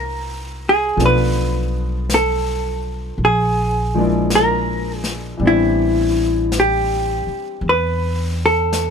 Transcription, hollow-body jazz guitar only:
0.00 0.64 A#4 medium
0.69 1.03 G#4 medium
1.06 2.09 B4 medium
2.14 3.24 A4 medium
3.25 4.35 G#4 medium
4.35 4.98 A#4 medium
4.98 5.22 G#4 medium
5.47 6.59 E4 medium
6.60 7.70 G4 medium
7.69 8.44 B4 medium
8.46 8.90 A4 medium

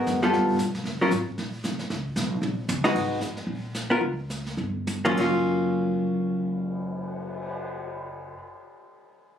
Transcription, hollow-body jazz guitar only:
0.00 0.19 G#3 medium
0.00 0.20 B3 medium
0.00 0.20 F#4 medium
0.00 0.20 A#4 medium
0.22 0.57 G3 medium
0.22 0.57 B3 medium
0.22 0.57 F4 medium
0.22 0.58 A4 medium
1.01 1.11 F#3 medium
1.01 1.11 C#4 medium
1.01 1.11 F4 medium
1.01 1.11 A#4 medium
2.84 3.19 G#3 medium
2.84 3.19 D#4 medium
2.84 3.19 F#4 medium
2.84 3.20 B4 medium
3.90 4.00 B3 medium
3.90 4.01 F4 medium
3.90 4.01 A#4 medium
5.05 5.16 F#3 medium
5.05 5.16 A#3 medium
5.05 5.17 C#4 medium
5.05 5.17 F4 medium
5.17 8.36 F#3 medium
5.17 8.38 A#3 medium
5.17 8.38 C#4 medium
5.17 8.40 F4 medium

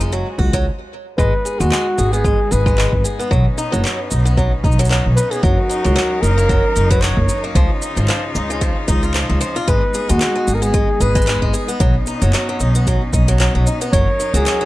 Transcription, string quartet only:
0.00 0.11 C#3 medium
0.00 0.62 C#4 medium
0.00 0.11 D#4 medium
0.00 0.11 F4 medium
0.12 0.65 G#3 medium
0.12 0.65 F#4 medium
1.19 3.29 G#3 medium
1.19 5.40 B3 medium
1.19 13.89 D#4 medium
3.31 9.64 C#4 medium
5.43 7.54 F#3 medium
5.43 7.54 A#4 medium
7.55 9.66 C#3 medium
7.55 9.66 F4 medium
9.68 11.78 G#3 medium
9.68 13.89 B3 medium
11.80 13.91 C#4 medium
13.94 14.65 F#3 medium
13.94 14.65 C#4 medium
13.94 14.65 D#4 medium
13.94 14.65 A#4 medium

